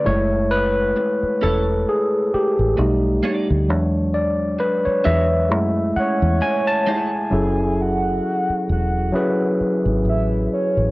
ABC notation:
X:1
M:4/4
L:1/16
Q:"Swing 16ths" 1/4=66
K:F#m
V:1 name="Soft synth lead"
z16 | z8 z2 c4 g2- | g2 f4 f4 z2 e2 c2 |]
V:2 name="Clean electric guitar"
z6 [CEAc]2 z6 [B,^DA=d]2 | z6 [DFGc]2 z6 [A,EGc]2 | z16 |]
V:3 name="Tine electric piano"
c2 B4 A2 G2 =G6 | z2 d2 B c e4 f2 g a3 | [F,CEGA]6- [F,CEGA] z [F,CEGB]6- [F,CEGB] z |]
V:4 name="Tine electric piano"
[G,A,E]6 z6 [=G,A,^D]4 | [F,G,Dc]6 z2 [G,A,E]8 | z16 |]
V:5 name="Fingered electric bass" clef=bass
F,,,4 z2 E,,,2 z3 A,,, B,,,2 z D,, | E,,4 z2 E,,2 F,,2 z E,, z4 | F,,,4 z2 E,,,2 z3 G,,, A,,,2 z A,,, |]